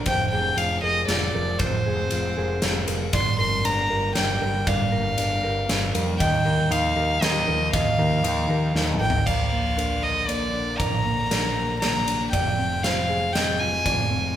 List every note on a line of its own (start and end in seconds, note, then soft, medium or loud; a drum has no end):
0.00 3.09 F3 medium
0.05 0.28 F1 medium
0.05 1.34 F3 medium
0.05 3.10 G#3 medium
0.05 3.10 C4 medium
0.05 0.57 C5 medium
0.05 0.30 G5 medium
0.05 kick medium
0.05 ride soft
0.31 0.53 F1 medium
0.31 0.83 G#4 medium
0.31 0.59 G5 medium
0.56 0.78 F1 medium
0.56 1.08 F4 medium
0.56 0.83 F5 medium
0.56 ride soft
0.82 1.04 F1 medium
0.82 1.85 G#4 medium
0.82 1.33 A#4 medium
0.82 1.07 D#5 medium
1.08 1.30 F1 medium
1.08 2.10 F4 medium
1.08 1.61 D5 medium
1.08 snare medium
1.08 ride soft
1.34 1.56 F1 medium
1.34 1.59 F3 medium
1.34 1.60 A#4 medium
1.59 1.81 F1 medium
1.59 2.87 F3 medium
1.59 2.87 C5 medium
1.59 2.11 C5 medium
1.59 kick medium
1.59 ride soft
1.86 2.07 F1 medium
1.86 2.36 G#4 medium
2.11 2.33 F1 medium
2.11 2.62 F4 medium
2.11 ride soft
2.37 2.59 F1 medium
2.37 3.14 G#4 medium
2.37 2.86 A#4 medium
2.62 2.84 F1 medium
2.62 3.14 F4 medium
2.62 snare medium
2.62 ride soft
2.88 3.09 F1 medium
2.88 3.13 F3 medium
2.88 3.13 A#4 medium
2.88 ride medium
3.13 3.35 G1 medium
3.13 4.41 G2 medium
3.13 6.17 D3 medium
3.13 6.17 G3 medium
3.13 6.17 A#3 medium
3.13 3.64 D5 medium
3.13 3.38 C6 medium
3.13 kick loud
3.13 ride medium
3.39 3.61 G1 medium
3.39 3.90 A#4 medium
3.39 3.67 C6 medium
3.65 3.87 G1 medium
3.65 4.15 D4 medium
3.65 4.15 A#5 medium
3.65 ride soft
3.90 4.12 G1 medium
3.90 4.40 A#4 medium
3.90 4.92 A#4 medium
4.15 4.38 G1 medium
4.15 5.17 D4 medium
4.15 4.69 G5 medium
4.15 snare medium
4.15 ride soft
4.41 4.63 G1 medium
4.41 5.69 G3 medium
4.41 4.67 A#4 medium
4.66 4.88 G1 medium
4.66 5.95 G2 medium
4.66 5.18 D5 medium
4.66 5.95 F5 medium
4.66 kick medium
4.66 ride soft
4.92 5.15 G1 medium
4.92 5.43 A#4 medium
5.18 5.40 G1 medium
5.18 5.68 D4 medium
5.18 ride soft
5.43 5.65 G1 medium
5.43 6.45 A#4 medium
5.43 5.93 A#4 medium
5.69 5.91 G1 medium
5.69 6.20 D4 medium
5.69 snare medium
5.69 ride soft
5.94 6.16 F2 medium
5.94 6.20 G3 medium
5.94 6.20 A#4 medium
5.94 ride soft
6.19 6.42 D#2 medium
6.19 9.23 D#3 medium
6.19 7.48 D#3 medium
6.19 9.23 F3 medium
6.19 9.24 A#3 medium
6.19 6.71 D#5 medium
6.19 6.73 G5 medium
6.19 kick medium
6.19 ride medium
6.45 6.67 D#2 medium
6.45 6.96 A#4 medium
6.71 6.92 D#2 medium
6.71 7.20 D#4 medium
6.71 7.23 F5 medium
6.71 ride soft
6.96 7.18 D#2 medium
6.96 7.46 A#4 medium
6.96 7.98 A#4 medium
7.21 7.43 D#2 medium
7.21 8.23 D#4 medium
7.21 7.73 D#5 medium
7.21 snare medium
7.21 ride medium
7.48 7.69 D#2 medium
7.48 8.75 F3 medium
7.48 7.73 A#4 medium
7.73 7.95 D#2 medium
7.73 9.01 D#3 medium
7.73 8.25 D#5 medium
7.73 8.72 F5 medium
7.73 kick loud
7.73 ride medium
7.98 8.20 D#2 medium
7.98 8.49 A#4 medium
8.24 8.45 D#2 medium
8.24 8.74 D#4 medium
8.24 ride medium
8.49 8.71 D#2 medium
8.49 9.27 A#4 medium
8.49 8.99 A#4 medium
8.74 8.96 D#2 medium
8.74 9.26 D#4 medium
8.74 snare soft
8.93 mid tom medium
9.00 9.22 G#1 medium
9.00 9.27 F3 medium
9.00 9.26 A#4 medium
9.00 9.27 G5 medium
9.10 floor tom medium
9.26 10.77 A#1 medium
9.26 10.54 A#2 medium
9.26 12.30 D3 medium
9.26 14.36 F3 medium
9.26 12.29 A#3 medium
9.26 9.77 D5 medium
9.26 10.05 F5 medium
9.26 kick medium
9.26 crash medium
9.52 10.27 A#3 soft
9.77 10.52 D4 medium
9.77 10.29 A#4 medium
9.77 ride soft
10.03 11.30 A#4 medium
10.03 10.29 D#5 medium
10.28 11.04 A#3 medium
10.28 10.79 D5 medium
10.28 ride soft
10.54 11.29 D4 soft
10.77 12.30 A#1 medium
10.77 12.07 A#2 medium
10.77 11.31 D5 medium
10.77 11.79 A#5 medium
10.77 kick medium
10.77 ride soft
11.05 11.80 A#3 medium
11.31 12.06 D4 medium
11.31 11.82 A#4 medium
11.31 snare medium
11.31 ride medium
11.56 12.33 A#4 medium
11.80 12.33 A#3 medium
11.80 12.31 D5 medium
11.80 12.28 A#5 medium
11.80 snare medium
11.80 ride soft
12.07 12.33 D4 medium
12.07 ride soft
12.32 13.83 F1 medium
12.32 14.36 C3 medium
12.32 13.60 F3 medium
12.32 14.36 G#3 medium
12.32 12.84 D5 medium
12.32 12.85 G5 medium
12.32 kick medium
12.32 ride medium
12.58 13.34 C4 medium
12.83 13.60 F4 medium
12.83 13.35 C5 medium
12.83 13.35 F5 medium
12.83 snare medium
12.83 ride soft
13.09 14.36 G#4 medium
13.33 14.09 C4 medium
13.33 13.86 D#5 medium
13.33 13.61 G5 medium
13.33 snare medium
13.33 ride soft
13.59 14.35 F4 medium
13.59 14.36 G#5 medium
13.85 14.36 F1 medium
13.85 14.36 F3 medium
13.85 14.36 D5 medium
13.85 kick medium
13.85 ride medium
14.11 14.36 C4 medium